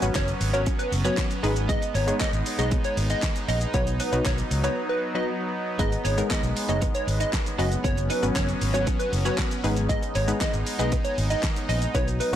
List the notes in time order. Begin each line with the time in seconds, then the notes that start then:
Already playing: F#3 B3 C#4, downlifter
0.02 G#1 F#3 B3 C#4 F#4 B4, closed hi-hat, shaker
0.15 F#1 C#4 C#5, kick, snare, clap, closed hi-hat, shaker
0.28 closed hi-hat, shaker
0.41 G#1, muted clean electric guitar stroke, open hi-hat, shaker
0.53 F#3 B3 C#4 F#4 A#4 C#5, closed hi-hat, shaker
0.66 C#4, kick, closed hi-hat, shaker
0.79 B4, closed hi-hat, shaker
0.92 F#1, muted clean electric guitar stroke, open hi-hat, shaker
1.05 F#3 B3 C#4 F#4 B4 C#5, closed hi-hat, shaker
1.18 kick, snare, clap, closed hi-hat, shaker
1.31 closed hi-hat, shaker
1.43 G#1 G#3 B3 D#4 G#4 B4, open hi-hat, shaker
1.56 closed hi-hat, shaker
1.69 G#3 D#5, kick, closed hi-hat, shaker
1.82 muted clean electric guitar stroke, closed hi-hat, shaker
1.94 G#1 C#4 C#5, open hi-hat, shaker
2.07 G#3 B3 D#4 G#4 C#5, closed hi-hat, shaker
2.20 B3 D#5, kick, snare, clap, closed hi-hat, shaker
2.33 G#1, closed hi-hat, shaker
2.46 muted clean electric guitar stroke, open hi-hat, shaker
2.58 B1 G#3 B3 D#4 G#4 C#5 D#5, closed hi-hat, shaker
2.71 B3, kick, closed hi-hat, shaker
2.84 C#5, closed hi-hat, shaker
2.97 G#1, muted clean electric guitar stroke, open hi-hat, shaker
3.10 D#4 D#5, closed hi-hat, shaker
3.23 kick, snare, clap, closed hi-hat, shaker
3.36 closed hi-hat, shaker
3.48 A#1 C#4 D#5, open hi-hat, shaker
3.61 closed hi-hat, shaker
3.74 B1 F#3 B3 D#4 F#4 B4 C#5, kick, closed hi-hat, shaker
3.87 muted clean electric guitar stroke, closed hi-hat, shaker
4.00 C#4 B4, open hi-hat, shaker
4.12 B1 F#3 B3 D#4 F#4 B4, closed hi-hat, shaker
4.25 B1 D#4 C#5, kick, snare, clap, closed hi-hat, shaker
4.38 closed hi-hat, shaker
4.51 C#2, muted clean electric guitar stroke, open hi-hat, shaker
4.64 F#3 B3 D#4 F#4 B4 C#5, closed hi-hat, shaker
4.89 B4
5.15 F#3 B3 D#4 F#4 B4 D#5
5.79 G#1 G#3 B3 D#4 G#4 B4 D#5, kick, closed hi-hat, shaker
5.92 muted clean electric guitar stroke, closed hi-hat, shaker
6.05 G#1 C#4 C#5, open hi-hat, shaker
6.17 G#3 B3 D#4 G#4 A#4, closed hi-hat, shaker
6.30 B3 D#5, kick, snare, clap, closed hi-hat, shaker
6.43 B1, closed hi-hat, shaker
6.56 muted clean electric guitar stroke, open hi-hat, shaker
6.69 F#1 G#3 B3 D#4 G#4 C#5 D#5, closed hi-hat, shaker
6.81 B3, kick, closed hi-hat, shaker
6.95 C#5, closed hi-hat, shaker
7.07 G#1, muted clean electric guitar stroke, open hi-hat, shaker
7.20 D#4 D#5, closed hi-hat, shaker
7.33 kick, snare, clap, closed hi-hat, shaker
7.46 closed hi-hat, shaker
7.58 F#1 F#3 B3 C#4 F#4 B4 D#5, open hi-hat, shaker
7.72 closed hi-hat, shaker
7.84 F#1 B3 C#5, kick, closed hi-hat, shaker
7.97 muted clean electric guitar stroke, closed hi-hat, shaker
8.10 D#4 B4, open hi-hat, shaker
8.23 G#1 F#3 B3 C#4 F#4 B4, closed hi-hat, shaker
8.36 F#1 C#4 C#5, kick, snare, clap, closed hi-hat, shaker
8.48 closed hi-hat, shaker
8.61 G#1, muted clean electric guitar stroke, open hi-hat, shaker
8.74 F#3 B3 C#4 F#4 B4 C#5, closed hi-hat, shaker
8.87 C#4, kick, closed hi-hat, shaker
8.99 B4, closed hi-hat, shaker
9.13 F#1, muted clean electric guitar stroke, open hi-hat, shaker
9.25 F#3 B3 C#4 F#4 B4 C#5, closed hi-hat, shaker
9.38 kick, snare, clap, closed hi-hat, shaker
9.51 closed hi-hat, shaker
9.64 G#1 G#3 B3 D#4 G#4 B4, open hi-hat, shaker
9.76 closed hi-hat, shaker
9.89 G#3 D#5, kick, closed hi-hat, shaker
10.02 muted clean electric guitar stroke, closed hi-hat, shaker
10.15 G#1 C#4 C#5, open hi-hat, shaker
10.28 G#3 B3 D#4 G#4 B4, closed hi-hat, shaker
10.41 B3 D#5, kick, snare, clap, closed hi-hat, shaker
10.54 G#1, closed hi-hat, shaker
10.67 muted clean electric guitar stroke, open hi-hat, shaker
10.79 B1 G#3 B3 D#4 G#4 B4 D#5, closed hi-hat, shaker
10.92 B3, kick, closed hi-hat, shaker
11.05 C#5, closed hi-hat, shaker
11.18 G#1, muted clean electric guitar stroke, open hi-hat, shaker
11.30 D#4 D#5, closed hi-hat, shaker
11.43 kick, snare, clap, closed hi-hat, shaker
11.56 closed hi-hat, shaker
11.69 A#1 C#4 D#5, open hi-hat, shaker
11.82 closed hi-hat, shaker
11.94 B1 F#3 B3 D#4 F#4 B4 C#5, kick, closed hi-hat, shaker
12.07 muted clean electric guitar stroke, closed hi-hat, shaker
12.20 D#4 B4, open hi-hat, shaker